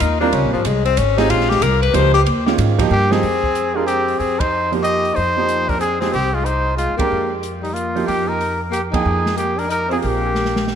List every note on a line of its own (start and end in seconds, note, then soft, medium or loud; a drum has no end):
0.00 0.32 D#2 medium
0.00 0.20 D#4 medium
0.00 hi-hat pedal medium
0.00 ride medium
0.20 0.62 G3 medium
0.20 0.63 C4 medium
0.20 0.36 D4 loud
0.20 0.63 F4 medium
0.20 0.63 A#4 medium
0.32 0.43 C#2 medium
0.32 0.52 C#4 medium
0.32 ride medium
0.43 0.54 A#1 medium
0.53 0.65 G#1 medium
0.53 0.67 F3 medium
0.65 0.96 C2 medium
0.65 0.85 G#3 medium
0.65 hi-hat pedal medium
0.65 ride medium
0.85 0.99 C4 loud
0.85 ride medium
0.97 1.29 G#1 medium
0.97 1.19 C#4 loud
0.97 hi-hat pedal medium
0.97 ride medium
1.17 1.59 C4 medium
1.17 1.32 D#4 loud
1.17 1.60 F4 medium
1.17 1.59 G4 medium
1.17 1.60 G#4 medium
1.17 snare soft
1.17 ride medium
1.30 1.61 A#1 medium
1.30 1.51 F4 loud
1.30 ride medium
1.40 snare soft
1.49 1.64 G4 loud
1.49 snare medium
1.61 1.93 C2 loud
1.61 1.81 A#4 loud
1.61 hi-hat pedal medium
1.61 ride medium
1.82 1.96 B4 loud
1.82 ride medium
1.93 2.25 C#2 loud
1.93 2.12 F3 medium
1.93 2.13 A#3 medium
1.93 2.13 D#4 medium
1.93 2.13 G4 medium
1.93 2.13 C5 loud
1.93 hi-hat pedal medium
1.93 ride medium
2.14 2.21 G4 loud
2.14 ride medium
2.26 2.58 D#2 medium
2.26 ride medium
2.46 2.77 D#3 medium
2.46 2.77 G#3 medium
2.46 2.77 C#4 medium
2.46 2.78 F4 loud
2.46 snare medium
2.58 2.90 G#2 loud
2.58 hi-hat pedal medium
2.58 ride medium
2.79 2.89 F3 medium
2.79 2.90 A#3 medium
2.79 2.90 D#4 medium
2.79 2.90 G4 loud
2.79 kick medium
2.79 ride medium
2.90 3.22 G2 loud
2.90 3.12 A#3 medium
2.90 3.13 G4 loud
3.11 3.21 F3 medium
3.11 3.22 A#3 medium
3.11 3.76 C4 medium
3.11 3.22 D#4 medium
3.11 3.22 G4 medium
3.11 3.78 G#4 loud
3.11 snare medium
3.23 4.16 F2 medium
3.23 open hi-hat soft
3.44 kick medium
3.55 closed hi-hat soft
3.74 3.85 G#3 medium
3.74 4.17 G#3 medium
3.74 4.17 D4 medium
3.74 3.86 F4 medium
3.74 4.18 G4 medium
3.74 4.18 A#4 medium
3.86 4.18 C4 medium
3.86 4.20 G4 medium
3.86 closed hi-hat soft
4.08 open hi-hat soft
4.18 5.13 F2 medium
4.18 4.41 C4 medium
4.18 4.41 G#4 medium
4.18 open hi-hat soft
4.39 4.72 D#4 medium
4.39 4.72 C5 medium
4.39 kick medium
4.39 ride medium
4.72 5.14 F3 medium
4.72 5.14 A#3 medium
4.72 5.15 D#4 medium
4.72 5.15 G4 medium
4.72 open hi-hat soft
4.82 5.15 G4 medium
4.82 5.17 D#5 loud
4.82 closed hi-hat medium
5.05 open hi-hat soft
5.14 6.10 F2 medium
5.14 5.69 D#4 medium
5.14 5.71 C5 loud
5.14 open hi-hat soft
5.37 5.79 F3 medium
5.37 5.79 A#3 medium
5.37 5.80 D#4 medium
5.37 5.80 G4 medium
5.49 closed hi-hat medium
5.67 5.77 D4 medium
5.67 5.80 A#4 medium
5.67 kick medium
5.67 open hi-hat soft
5.78 5.99 C4 medium
5.78 6.00 G#4 medium
5.78 closed hi-hat soft
6.00 6.12 F3 medium
6.00 6.13 A#3 medium
6.00 6.11 C4 medium
6.00 6.13 D#4 medium
6.00 6.13 G4 medium
6.00 6.12 G#4 medium
6.00 snare soft
6.00 open hi-hat soft
6.11 6.86 C2 medium
6.11 6.35 C4 medium
6.11 6.36 G4 medium
6.11 open hi-hat soft
6.33 6.46 G#3 medium
6.33 6.47 F4 medium
6.44 6.76 D#4 medium
6.44 6.76 C5 medium
6.44 closed hi-hat soft
6.76 6.96 G#3 medium
6.76 6.97 F4 medium
6.76 closed hi-hat medium
6.89 7.00 F2 medium
6.96 7.41 G#3 medium
6.96 7.32 A#3 medium
6.96 7.41 D4 medium
6.96 7.32 G4 medium
6.96 7.41 G4 medium
6.96 7.42 A#4 medium
6.96 kick medium
6.96 ride medium
7.01 7.11 F#2 medium
7.12 8.05 F2 medium
7.43 closed hi-hat medium
7.61 7.75 G3 medium
7.61 7.75 D#4 medium
7.61 open hi-hat soft
7.73 8.04 A#3 medium
7.73 8.07 F4 medium
7.73 closed hi-hat medium
7.96 8.38 F3 medium
7.96 8.38 A#3 medium
7.96 8.39 D#4 medium
7.96 8.39 G4 medium
7.96 open hi-hat soft
8.05 9.02 F2 medium
8.05 8.28 A#3 medium
8.05 8.30 G4 medium
8.05 open hi-hat soft
8.26 8.60 D#4 medium
8.26 8.61 A#4 medium
8.41 open hi-hat soft
8.70 8.80 A#3 medium
8.70 8.82 G4 medium
8.70 closed hi-hat medium
8.91 9.35 F3 medium
8.91 9.36 A#3 medium
8.91 9.33 D#4 medium
8.91 9.36 D#4 medium
8.91 9.34 G#4 medium
8.91 kick medium
8.91 ride medium
8.95 9.36 G5 medium
9.05 9.99 F2 medium
9.26 snare soft
9.36 9.59 A#3 medium
9.36 9.60 G4 medium
9.36 closed hi-hat medium
9.57 9.68 D4 medium
9.57 9.70 A#4 medium
9.57 open hi-hat soft
9.68 9.88 D#4 medium
9.68 9.90 A#4 medium
9.68 closed hi-hat medium
9.89 9.95 C4 medium
9.89 10.33 C4 medium
9.89 10.33 F4 medium
9.89 10.32 G4 medium
9.89 9.97 G#4 medium
9.89 10.33 G#4 medium
9.89 open hi-hat soft
10.01 10.75 A#1 medium
10.01 10.75 A#3 medium
10.01 10.75 G4 medium
10.01 open hi-hat soft
10.35 snare soft
10.45 snare soft
10.56 snare medium
10.67 snare medium